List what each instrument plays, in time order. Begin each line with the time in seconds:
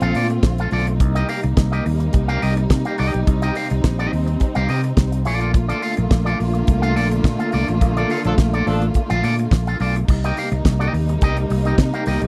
Already playing: string section D3 A3 C4 F4
0.01 fingered electric bass A#1, clean electric guitar F4 A4 F5, closed hi-hat
0.15 fingered electric bass A#2, clean electric guitar F4 A4 D5, open hi-hat
0.30 closed hi-hat
0.43 fingered electric bass A#1, muted clean electric guitar stroke, kick, snare, closed hi-hat
0.58 clean electric guitar F4 A4 F5, closed hi-hat
0.71 fingered electric bass B1, clean electric guitar F4 A4 D5, open hi-hat
0.87 muted clean electric guitar stroke, closed hi-hat
1.00 fingered electric bass C2, string section C3 G3 A#3 D#4, muted clean electric guitar stroke, kick, closed hi-hat
1.15 clean electric guitar G4 A#4 D#5, closed hi-hat
1.29 clean electric guitar G4 A#4 F5, open hi-hat
1.44 fingered electric bass C2, muted clean electric guitar stroke, closed hi-hat
1.57 fingered electric bass C2, muted clean electric guitar stroke, kick, snare, closed hi-hat
1.72 clean electric guitar G4 A#4 D#5, closed hi-hat
1.85 fingered electric bass D#2, muted clean electric guitar stroke, open hi-hat
2.00 muted clean electric guitar stroke, closed hi-hat
2.13 fingered electric bass C2, muted clean electric guitar stroke, kick, closed hi-hat
2.28 clean electric guitar G4 A#4 F5, closed hi-hat
2.42 fingered electric bass C2, clean electric guitar G4 A#4 D#5, open hi-hat
2.57 muted clean electric guitar stroke, closed hi-hat
2.70 fingered electric bass C3, muted clean electric guitar stroke, kick, snare, closed hi-hat
2.85 clean electric guitar G4 A#4 F5, closed hi-hat
2.98 fingered electric bass C2, clean electric guitar G4 A#4 D#5, open hi-hat
3.13 fingered electric bass B1, muted clean electric guitar stroke, closed hi-hat
3.27 fingered electric bass C2, string section C4, muted clean electric guitar stroke, kick, closed hi-hat
3.42 clean electric guitar G4 A#4 D#5, closed hi-hat
3.55 clean electric guitar G4 A#4 F5, open hi-hat
3.70 fingered electric bass C2, muted clean electric guitar stroke, closed hi-hat
3.84 fingered electric bass A#1, muted clean electric guitar stroke, kick, snare, closed hi-hat
3.99 clean electric guitar G4 A#4 D#5, closed hi-hat
4.12 fingered electric bass D#2, muted clean electric guitar stroke, open hi-hat
4.27 muted clean electric guitar stroke, closed hi-hat
4.40 muted clean electric guitar stroke, kick, closed hi-hat
4.55 fingered electric bass C2, clean electric guitar G4 A#4 F5, closed hi-hat
4.69 fingered electric bass C3, clean electric guitar G4 A#4 D#5, open hi-hat
4.84 muted clean electric guitar stroke, closed hi-hat
4.97 fingered electric bass C2, muted clean electric guitar stroke, kick, snare, closed hi-hat
5.12 muted clean electric guitar stroke, closed hi-hat
5.25 fingered electric bass A#1, string section D3 A3 A#3 F4, clean electric guitar F4 A4 D5, open hi-hat
5.41 clean electric guitar F4 A4 D5, closed hi-hat
5.53 muted clean electric guitar stroke, kick, closed hi-hat
5.68 clean electric guitar F4 A4 D5, closed hi-hat
5.82 clean electric guitar F4 A4 F5, open hi-hat
5.97 fingered electric bass A#1, muted clean electric guitar stroke, closed hi-hat
6.11 fingered electric bass A#1, muted clean electric guitar stroke, kick, snare, closed hi-hat
6.25 clean electric guitar F4 A4 D5, closed hi-hat
6.39 fingered electric bass A#1, muted clean electric guitar stroke, open hi-hat
6.54 muted clean electric guitar stroke, closed hi-hat
6.67 fingered electric bass C2, muted clean electric guitar stroke, kick, closed hi-hat
6.82 clean electric guitar F4 A4 F5, closed hi-hat
6.96 fingered electric bass A#1, clean electric guitar F4 A4 D5, open hi-hat
7.11 muted clean electric guitar stroke, closed hi-hat
7.24 fingered electric bass A#2, muted clean electric guitar stroke, kick, snare, closed hi-hat
7.39 clean electric guitar F4 A4 F5, closed hi-hat
7.52 fingered electric bass C2, clean electric guitar F4 A4 D5, open hi-hat
7.68 fingered electric bass A1, muted clean electric guitar stroke, closed hi-hat
7.81 fingered electric bass A#1, muted clean electric guitar stroke, kick, closed hi-hat
7.97 clean electric guitar F4 A4 D5, closed hi-hat
8.10 clean electric guitar F4 A4 F5, open hi-hat
8.24 fingered electric bass A#1, horn section F3 D4 A4, muted clean electric guitar stroke, closed hi-hat
8.38 fingered electric bass A#1, muted clean electric guitar stroke, kick, snare, closed hi-hat
8.53 clean electric guitar F4 A4 D5, closed hi-hat
8.66 fingered electric bass A1, horn section F3 D4 A4, muted clean electric guitar stroke, open hi-hat
8.82 muted clean electric guitar stroke, closed hi-hat
8.94 muted clean electric guitar stroke, kick, closed hi-hat
9.10 fingered electric bass A#1, clean electric guitar F4 A4 F5, closed hi-hat
9.24 fingered electric bass A#2, clean electric guitar F4 A4 D5, open hi-hat
9.39 muted clean electric guitar stroke, closed hi-hat
9.51 fingered electric bass A#1, muted clean electric guitar stroke, kick, snare, closed hi-hat
9.67 clean electric guitar F4 A4 F5, closed hi-hat
9.80 fingered electric bass B1, clean electric guitar F4 A4 D5, open hi-hat
9.96 muted clean electric guitar stroke, closed hi-hat
10.08 fingered electric bass C2, string section C3 G3 A#3 D#4, muted clean electric guitar stroke, kick, crash
10.24 clean electric guitar G4 A#4 D#5, closed hi-hat
10.37 clean electric guitar G4 A#4 F5, open hi-hat
10.52 fingered electric bass C2, muted clean electric guitar stroke, closed hi-hat
10.65 fingered electric bass C2, muted clean electric guitar stroke, kick, snare, closed hi-hat
10.79 clean electric guitar G4 A#4 D#5, closed hi-hat
10.93 fingered electric bass D#2, muted clean electric guitar stroke, open hi-hat
11.09 muted clean electric guitar stroke, closed hi-hat
11.21 fingered electric bass C2, clean electric guitar G4 A#4 D#5, kick, closed hi-hat
11.37 muted clean electric guitar stroke, closed hi-hat
11.50 fingered electric bass C2, muted clean electric guitar stroke, open hi-hat
11.65 clean electric guitar G4 A#4 D#5, closed hi-hat
11.78 fingered electric bass C3, kick, snare, closed hi-hat
11.94 clean electric guitar G4 A#4 F5, closed hi-hat
12.06 fingered electric bass C2, clean electric guitar G4 A#4 D#5, open hi-hat
12.22 fingered electric bass B1, muted clean electric guitar stroke, closed hi-hat